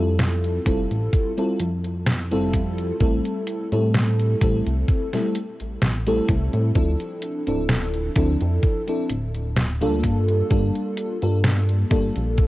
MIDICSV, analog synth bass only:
0, 0, Header, 1, 2, 480
1, 0, Start_track
1, 0, Tempo, 937500
1, 1540, Time_signature, 4, 2, 24, 8
1, 6385, End_track
2, 0, Start_track
2, 0, Title_t, "Analog synth bass"
2, 0, Program_c, 0, 38
2, 0, Note_on_c, 0, 41, 85
2, 305, Note_off_c, 0, 41, 0
2, 338, Note_on_c, 0, 29, 90
2, 442, Note_off_c, 0, 29, 0
2, 466, Note_on_c, 0, 33, 86
2, 558, Note_off_c, 0, 33, 0
2, 820, Note_on_c, 0, 41, 92
2, 1188, Note_on_c, 0, 29, 85
2, 1195, Note_off_c, 0, 41, 0
2, 1298, Note_on_c, 0, 41, 91
2, 1306, Note_off_c, 0, 29, 0
2, 1497, Note_off_c, 0, 41, 0
2, 1539, Note_on_c, 0, 33, 97
2, 1643, Note_off_c, 0, 33, 0
2, 1907, Note_on_c, 0, 45, 89
2, 2226, Note_off_c, 0, 45, 0
2, 2260, Note_on_c, 0, 33, 92
2, 2363, Note_off_c, 0, 33, 0
2, 2388, Note_on_c, 0, 36, 90
2, 2479, Note_off_c, 0, 36, 0
2, 2868, Note_on_c, 0, 33, 44
2, 2958, Note_off_c, 0, 33, 0
2, 2980, Note_on_c, 0, 33, 91
2, 3177, Note_off_c, 0, 33, 0
2, 3219, Note_on_c, 0, 36, 100
2, 3323, Note_off_c, 0, 36, 0
2, 3347, Note_on_c, 0, 45, 89
2, 3439, Note_off_c, 0, 45, 0
2, 3459, Note_on_c, 0, 38, 97
2, 3563, Note_off_c, 0, 38, 0
2, 3829, Note_on_c, 0, 26, 84
2, 4147, Note_off_c, 0, 26, 0
2, 4179, Note_on_c, 0, 38, 91
2, 4283, Note_off_c, 0, 38, 0
2, 4309, Note_on_c, 0, 41, 89
2, 4399, Note_off_c, 0, 41, 0
2, 4661, Note_on_c, 0, 26, 89
2, 5028, Note_on_c, 0, 38, 88
2, 5035, Note_off_c, 0, 26, 0
2, 5139, Note_on_c, 0, 43, 88
2, 5147, Note_off_c, 0, 38, 0
2, 5337, Note_off_c, 0, 43, 0
2, 5379, Note_on_c, 0, 31, 97
2, 5483, Note_off_c, 0, 31, 0
2, 5748, Note_on_c, 0, 43, 88
2, 6066, Note_off_c, 0, 43, 0
2, 6099, Note_on_c, 0, 31, 91
2, 6203, Note_off_c, 0, 31, 0
2, 6229, Note_on_c, 0, 34, 87
2, 6385, Note_off_c, 0, 34, 0
2, 6385, End_track
0, 0, End_of_file